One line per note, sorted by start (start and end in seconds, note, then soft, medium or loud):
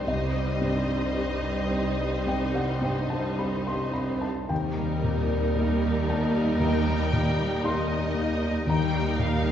0.00 0.10 G2 soft
0.00 0.34 G3 soft
0.00 0.41 C4 soft
0.00 1.70 C4 soft
0.00 0.10 G4 soft
0.00 1.43 G4 soft
0.00 0.11 C5 soft
0.00 0.62 C5 soft
0.00 0.31 D#5 soft
0.00 0.10 G5 medium
0.06 4.25 C2 soft
0.06 2.24 C2 soft
0.06 4.26 C2 soft
0.06 3.98 C3 soft
0.06 4.26 G3 soft
0.06 4.14 G3 soft
0.06 5.54 C4 soft
0.06 4.26 D#4 soft
0.06 4.26 C5 soft
0.06 3.91 D#5 medium
0.06 2.24 D#5 medium
0.35 0.88 G3 soft
0.61 1.49 G2 soft
0.61 1.16 C5 soft
0.90 2.55 G3 soft
1.15 1.67 C4 soft
1.15 1.67 G4 soft
1.15 1.68 C5 soft
1.15 2.82 C5 soft
1.44 2.00 G4 soft
1.71 2.61 C4 soft
1.71 2.27 C4 soft
2.01 3.66 G4 soft
2.26 4.45 C2 soft
2.26 3.94 C4 soft
2.26 2.54 G5 medium
2.55 3.10 G3 soft
2.55 2.82 F#5 medium
2.81 3.72 G2 soft
2.81 3.39 C5 soft
2.81 3.10 G5 soft
3.10 4.77 G3 soft
3.10 3.37 A5 medium
3.39 3.91 C4 soft
3.39 3.91 G4 soft
3.39 3.91 C5 soft
3.39 4.55 C5 soft
3.39 3.65 B5 medium
3.67 4.22 G4 soft
3.67 3.93 C6 medium
3.94 4.50 C4 soft
3.94 4.54 C4 soft
3.94 4.20 B5 medium
4.21 5.83 G4 soft
4.21 4.48 A5 soft
4.49 8.64 D#2 soft
4.49 6.57 D#2 soft
4.49 8.42 D#3 soft
4.49 8.64 G3 soft
4.49 8.65 G3 medium
4.49 8.64 D#4 soft
4.49 8.65 A#4 soft
4.49 6.05 G5 medium
4.78 5.29 G3 soft
5.03 5.88 A#2 soft
5.03 8.94 A#3 soft
5.31 6.87 G3 soft
5.56 6.05 A#3 soft
5.56 8.68 A#3 soft
5.56 6.05 D#4 soft
5.56 6.05 G4 soft
5.85 6.35 G4 soft
6.09 6.92 A#3 soft
6.09 6.62 D#4 soft
6.09 6.58 A5 medium
6.36 7.91 G4 soft
6.59 8.64 D#2 soft
6.59 8.17 D#4 soft
6.59 7.61 G5 medium
6.59 7.61 A#5 medium
6.88 7.39 G3 soft
7.12 7.96 A#2 soft
7.40 8.94 G3 soft
7.64 8.13 A#3 soft
7.64 8.13 D#4 soft
7.64 8.13 G4 soft
7.64 8.69 D#5 medium
7.64 8.64 C6 medium
7.92 8.42 G4 soft
8.15 8.98 A#3 soft
8.15 9.52 D#4 soft
8.44 9.52 G4 soft
8.67 9.52 D#2 soft
8.67 9.52 D#2 medium
8.67 9.52 D#3 soft
8.67 9.52 G3 soft
8.67 9.52 G3 medium
8.67 9.52 A#3 medium
8.67 9.52 D#4 medium
8.67 9.52 A#4 soft
8.67 9.18 G5 medium
8.67 9.52 A#5 medium
8.95 9.45 G3 soft
9.18 9.52 A#2 soft
9.18 9.52 F5 medium
9.46 9.52 G3 soft